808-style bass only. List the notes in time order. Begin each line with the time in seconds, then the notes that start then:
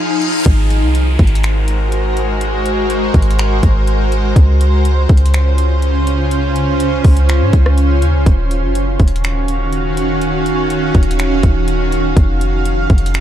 0.46 G#1
0.82 C2
1.19 G#1
3.14 G#1
3.63 G#1
4.36 C#2
5.09 C#2
7.05 C#2
7.41 G#2
7.53 C#2
8.02 D#2
8.14 C#2
8.26 D#1
8.63 F#1
9.00 D#1
10.95 D#1
11.43 D#1
12.17 F1
12.90 F1